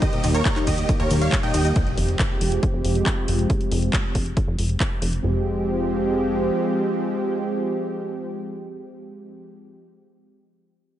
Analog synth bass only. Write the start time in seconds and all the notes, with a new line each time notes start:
0.24 D#2
0.67 D#2
1.00 D#2
1.11 D#2
1.54 D#2
1.98 F1
2.41 F1
2.74 F1
2.85 F1
3.28 F1
3.71 F1
4.15 F1
4.47 F1
4.58 F1
5.02 F1
5.24 F1